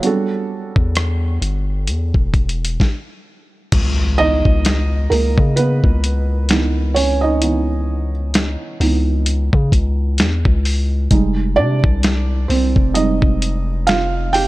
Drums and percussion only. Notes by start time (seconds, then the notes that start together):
0.03 closed hi-hat
0.76 kick
0.95 cross-stick, closed hi-hat
1.42 closed hi-hat
1.87 closed hi-hat
2.14 kick
2.34 kick, closed hi-hat
2.49 closed hi-hat
2.65 closed hi-hat
2.80 kick, snare
3.72 kick, closed hi-hat, crash
4.45 kick
4.65 snare, closed hi-hat
5.12 open hi-hat
5.38 kick
5.57 closed hi-hat
5.84 kick
6.04 closed hi-hat
6.49 snare, closed hi-hat
6.96 open hi-hat
7.42 closed hi-hat
8.34 snare, closed hi-hat
8.81 open hi-hat
9.26 closed hi-hat
9.53 kick
9.72 kick, closed hi-hat
10.18 snare, closed hi-hat
10.45 kick
10.65 open hi-hat
11.11 kick, closed hi-hat
11.84 kick
12.03 snare, closed hi-hat
12.50 open hi-hat
12.76 kick
12.95 closed hi-hat
13.22 kick
13.42 closed hi-hat
13.87 snare, closed hi-hat
14.34 open hi-hat